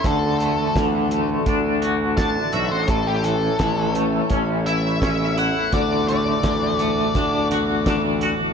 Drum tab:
HH |xxxxxxxx|xxxxxxxx|xxxxxxxx|
SD |--o---o-|--o---o-|--o--oo-|
BD |o-o-o-o-|o-o-o-o-|o-o-o-o-|